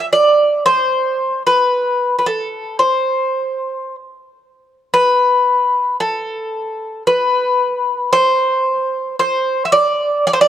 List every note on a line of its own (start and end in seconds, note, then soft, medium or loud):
0.13 0.66 D5 medium
0.66 1.42 C5 medium
1.47 2.15 B4 medium
2.19 2.26 B4 medium
2.26 2.76 A4 medium
2.79 3.95 C5 medium
4.93 5.96 B4 medium
6.00 7.02 A4 medium
7.07 8.12 B4 medium
8.13 9.15 C5 loud
9.19 9.65 C5 medium
9.65 9.72 E5 medium
9.72 10.25 D5 loud
10.27 10.32 D5 loud
10.33 10.40 C5 medium
10.41 10.48 D5 loud